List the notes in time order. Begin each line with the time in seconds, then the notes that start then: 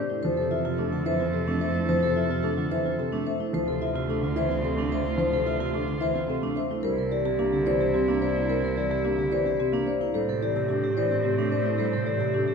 Already playing: C4 C5 D5
0.10 A3 E4
0.23 F2 F3 A4 C5
0.37 C3 A4
0.51 E3 F4 E5
0.65 C3 F4
0.78 A3 D4 A4
0.92 D3 F4
1.06 E3 C5 E5
1.20 C4 F4
1.33 C3 C4 A4
1.47 A3 D4
1.61 C4 C5 E5
1.75 A3 E4
1.89 F3 C5
2.02 C3 A4
2.16 E3 F4 E5
2.30 C3 F4
2.43 A3 D4 A4
2.57 D3 F4
2.71 E3 C5 E5
2.85 C4 F4
2.99 C3 C4 A4
3.12 A3 D4
3.26 C4 C5 E5
3.40 A3 E4
3.53 D2 F3 F4 C5
3.67 C3 A4
3.81 E3 F4 E5
3.95 C3 F4
4.08 A3 D4 A4
4.22 D3 F4
4.36 E3 C5 E5
4.49 C4 F4
4.62 C3 C4 A4
4.76 A3 D4
4.90 C4 C5 E5
5.04 A3 E4
5.18 F3 C5
5.31 C3 A4
5.46 E3 F4 E5
5.60 C3 F4
5.73 A3 D4 A4
5.87 D3 F4
6.01 E3 C5 E5
6.14 C4 F4
6.28 C3 C4 A4
6.42 A3 D4
6.56 C4 C5 E5
6.70 A3 E4
6.83 C2 G3 E4 A#4 C5
6.98 C3 A#4
7.11 E3 G4 D5
7.25 C3 G4
7.39 A#3 D4 G4
7.53 D3 G4
7.66 E3 C5 D5
7.80 C4 G4
7.94 C3 C4 G4
8.08 A#3 D4
8.22 C4 C5 D5
8.36 A#3 E4
8.49 G3 A#4 C5
8.63 C3 A#4
8.76 E3 G4 D5
8.90 C3 G4
9.05 A#3 D4 G4
9.18 D3 G4
9.32 E3 C5 D5
9.45 C4 G4
9.59 C3 C4 G4
9.72 A#3 D4
9.86 C4 C5 D5
10.00 A#3 E4
10.14 A2 G3 C4 A4 C5
10.28 C3 A4
10.42 E3 G4 D5
10.56 C3 G4
10.69 A3 D4 G4
10.84 G4
10.97 E3 C5 D5
11.11 C4 G4
11.24 C3 C4 G4
11.38 A3 D4
11.51 C4 C5 D5
11.65 A3 E4
11.78 G3 A4 C5
11.93 C3 A4
12.06 E3 G4 D5
12.20 C3 G4
12.34 A3 D4 G4
12.48 G4